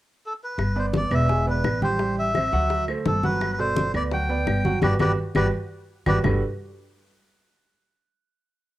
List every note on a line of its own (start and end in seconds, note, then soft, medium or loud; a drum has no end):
0.26 0.33 A4 medium
0.44 0.79 B4 medium
0.58 1.08 G1 medium
0.58 high bongo medium
0.58 high conga soft
0.58 claves medium
0.75 1.05 B3 medium
0.75 1.05 B4 medium
0.75 0.86 C5 medium
0.75 1.05 D5 medium
0.75 high conga soft
0.93 1.13 D5 medium
0.93 high bongo medium
0.93 high conga medium
1.11 1.60 E1 medium
1.11 1.26 B3 medium
1.11 1.26 B4 medium
1.11 1.26 D5 medium
1.11 1.46 E5 medium
1.11 claves medium
1.28 1.43 G#3 medium
1.28 1.44 G#4 medium
1.28 1.44 G#5 medium
1.28 high bongo medium
1.28 high conga soft
1.47 1.76 B3 medium
1.47 1.76 B4 medium
1.47 1.81 B4 medium
1.47 1.76 D5 medium
1.47 high conga soft
1.64 2.47 A1 medium
1.64 high bongo medium
1.64 low bongo medium
1.64 high conga soft
1.64 claves medium
1.82 1.96 G3 medium
1.82 1.97 G4 medium
1.82 2.16 C5 medium
1.82 1.97 G5 medium
1.82 high conga medium
1.99 2.28 G3 medium
1.99 2.28 G4 medium
1.99 2.29 G5 medium
1.99 high bongo medium
1.99 high conga soft
2.17 2.85 E5 medium
2.17 high conga soft
2.35 2.49 C4 medium
2.35 2.50 C5 medium
2.35 2.50 E5 medium
2.35 high bongo medium
2.35 high conga medium
2.35 claves medium
2.52 3.02 D2 medium
2.52 2.82 F#3 medium
2.52 2.82 F#4 medium
2.52 2.82 F#5 medium
2.52 high bongo soft
2.52 high conga soft
2.70 high bongo medium
2.70 high conga soft
2.88 3.17 A3 medium
2.88 3.17 A4 medium
2.88 3.18 C5 medium
2.88 high bongo soft
2.88 high conga soft
2.88 claves medium
3.06 3.88 G1 medium
3.06 3.25 A4 medium
3.06 high bongo medium
3.06 low bongo medium
3.06 high conga medium
3.23 3.52 F#3 medium
3.23 3.53 F#4 medium
3.23 3.51 B4 medium
3.23 3.53 F#5 medium
3.23 high bongo soft
3.23 high conga medium
3.41 high bongo medium
3.41 high conga soft
3.41 claves medium
3.53 3.59 B4 medium
3.59 3.88 B2 medium
3.59 3.88 A4 medium
3.59 3.92 C5 medium
3.59 3.88 D5 medium
3.59 high conga soft
3.76 high bongo medium
3.76 high conga medium
3.94 4.44 D2 medium
3.94 4.09 B3 medium
3.94 4.09 B4 medium
3.94 4.09 D5 medium
3.94 4.03 D5 medium
3.94 claves medium
4.12 4.27 F#3 medium
4.12 4.27 F#4 medium
4.12 4.27 F#5 medium
4.12 4.79 G5 medium
4.12 high bongo medium
4.12 high conga soft
4.29 4.58 B3 medium
4.29 4.58 B4 medium
4.29 4.59 D5 medium
4.29 high conga soft
4.47 4.80 G1 medium
4.47 high bongo medium
4.47 low bongo medium
4.47 high conga soft
4.47 claves medium
4.65 4.79 F#3 medium
4.65 4.80 F#4 medium
4.65 4.80 F#5 medium
4.65 high conga medium
4.81 4.95 G1 medium
4.81 4.94 F#4 medium
4.81 4.94 G4 medium
4.81 4.94 B4 medium
4.81 4.94 D5 medium
4.81 high bongo medium
4.81 high conga medium
4.81 claves medium
4.99 5.13 G1 medium
4.99 5.12 F#4 medium
4.99 5.12 G4 medium
4.99 5.12 B4 medium
4.99 5.12 D5 medium
4.99 high bongo medium
4.99 high conga medium
4.99 claves medium
5.35 5.49 G1 medium
5.35 5.47 F#4 medium
5.35 5.47 G4 medium
5.35 5.48 G4 medium
5.35 5.47 B4 medium
5.35 5.48 B4 medium
5.35 5.47 D5 medium
5.35 high bongo medium
5.35 high conga medium
5.35 claves loud
6.06 6.19 G1 medium
6.06 6.18 F#4 medium
6.06 6.18 G4 medium
6.06 6.19 G4 medium
6.06 6.18 B4 medium
6.06 6.19 B4 medium
6.06 6.19 D5 medium
6.06 high bongo medium
6.06 high conga loud
6.06 claves medium
6.24 6.41 G1 medium
6.24 6.40 G3 medium
6.24 6.41 D4 medium
6.24 6.41 F#4 medium
6.24 6.41 G4 medium
6.24 6.41 A4 medium
6.24 6.41 B4 medium
6.24 low bongo medium
6.24 low conga medium
6.24 claves medium